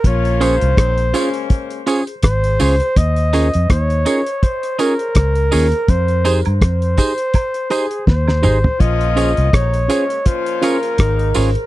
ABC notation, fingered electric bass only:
X:1
M:4/4
L:1/16
Q:"Swing 16ths" 1/4=82
K:Bbm
V:1 name="Fingered electric bass" clef=bass
B,,,3 C,, B,,,2 z6 A,,,2 D,, z | E,,3 F,, E,,2 z6 D,,2 E,, z | F,,3 =G,, F,,2 z6 E,,2 A,,, z | B,,,3 C,, B,,,2 z6 A,,,2 A,,, z |]